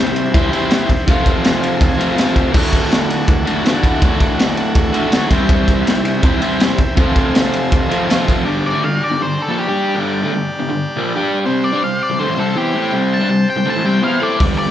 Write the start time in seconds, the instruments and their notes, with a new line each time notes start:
Already playing: overdriven electric guitar C3 G3 C4 E4 G4 C5, transistor combo organ E4 G4 C5
0.16 ride
0.34 overdriven electric guitar C3 G3 C4 E4 G4 C5, kick, ride
0.52 overdriven electric guitar C3 G3 C4 E4 G4 C5, ride
0.70 snare, ride
0.89 kick, ride
1.07 overdriven electric guitar F2 C3 F3 A3 C4 F4, transistor combo organ F4 A4 C5, kick, ride
1.26 kick, ride
1.44 snare, ride
1.63 ride
1.81 kick, ride
1.97 overdriven electric guitar C3 F3 A3 C4 F4, ride
2.02 overdriven electric guitar F2
2.16 overdriven electric guitar F2 C3 F3 A3 C4, snare, ride
2.20 overdriven electric guitar F4
2.36 kick, ride
2.52 overdriven electric guitar D2 A2 D3 A3, transistor combo organ F#4 A4 D5, kick, crash
2.57 overdriven electric guitar F#4
2.73 kick, ride
2.91 snare, ride
3.10 ride
3.28 kick, ride
3.45 overdriven electric guitar D2 A2 D3 A3 F#4, ride
3.64 overdriven electric guitar D2 A2 D3 A3 F#4, snare, ride
3.83 kick, ride
4.00 overdriven electric guitar D2 A2 D3 A3, kick, ride
4.04 overdriven electric guitar F#4
4.20 kick, ride
4.39 snare, ride
4.57 ride
4.75 kick, ride
4.93 overdriven electric guitar A2 D3 A3 F#4, transistor combo organ E5, ride
4.97 overdriven electric guitar D2
5.11 overdriven electric guitar D2 A2 D3 A3 F#4, transistor combo organ F#5, snare, ride
5.29 overdriven electric guitar C3 G3 C4 E4 G4, transistor combo organ E4 G4 C5 G5, kick, ride
5.34 overdriven electric guitar C5
5.49 kick, ride
5.68 kick, ride
5.87 snare, ride
6.05 ride
6.21 overdriven electric guitar C3 G3 C4 E4 G4, kick, ride
6.25 overdriven electric guitar C5
6.41 overdriven electric guitar C3 G3 C4 E4 G4 C5, ride
6.60 snare, ride
6.78 kick, ride
6.96 overdriven electric guitar F2 C3 F3 A3 C4, transistor combo organ F4 A4 C5, kick, ride
7.00 overdriven electric guitar F4
7.16 kick, ride
7.35 snare, ride
7.54 ride
7.72 kick, ride
7.89 overdriven electric guitar C3 F3 A3 C4 F4, ride
7.93 overdriven electric guitar F2
8.07 overdriven electric guitar F2 C3 F3 A3 C4, ride
8.11 overdriven electric guitar F4, snare
8.28 kick, ride
8.44 overdriven electric guitar G2 D3 G3, transistor combo organ D4 G4 D5
8.66 lead electric guitar D5
8.73 overdriven electric guitar D3 A3
8.83 overdriven electric guitar G2 D3, lead electric guitar F5
9.04 lead electric guitar D5
9.11 overdriven electric guitar G2 D3
9.21 overdriven electric guitar G2 D3, lead electric guitar C5
9.42 lead electric guitar A4
9.48 overdriven electric guitar A#2 F3 A#3
9.59 lead electric guitar G4
9.67 overdriven electric guitar G3 D4 G4
9.94 overdriven electric guitar G2 D3 G3
10.23 overdriven electric guitar D3 A3
10.32 overdriven electric guitar G2 D3
10.59 overdriven electric guitar G2 D3
10.69 overdriven electric guitar G2 D3
10.96 overdriven electric guitar A#2 F3 A#3
11.15 overdriven electric guitar G3 D4 G4
11.44 overdriven electric guitar C3 G3 C4, transistor combo organ C4 G4 C5
11.64 lead electric guitar D5
11.72 overdriven electric guitar G3 D4
11.81 overdriven electric guitar C3 G3, lead electric guitar F5
12.03 lead electric guitar D5
12.10 overdriven electric guitar C3 G3
12.19 overdriven electric guitar D3 A3, lead electric guitar C5
12.28 overdriven electric guitar A2 E3
12.37 overdriven electric guitar C3 G3 C4, lead electric guitar A4
12.56 overdriven electric guitar E3 B3 E4, lead electric guitar G4
12.75 overdriven electric guitar A3 E4 A4
12.92 overdriven electric guitar C3 G3 C4
13.14 lead electric guitar A5
13.20 overdriven electric guitar G3 D4
13.30 overdriven electric guitar C3 G3
13.50 lead electric guitar G5
13.57 overdriven electric guitar C3 G3
13.66 overdriven electric guitar D3 A3
13.70 lead electric guitar A5
13.75 overdriven electric guitar A2 E3
13.84 overdriven electric guitar C3 G3 C4, lead electric guitar G5
14.02 overdriven electric guitar E3 B3 E4, lead electric guitar F5
14.21 overdriven electric guitar A3 E4 A4, lead electric guitar D5
14.39 overdriven electric guitar G2 D3 G3, transistor combo organ D4 G4 D5, kick, open hi-hat
14.58 lead electric guitar D5
14.67 overdriven electric guitar D3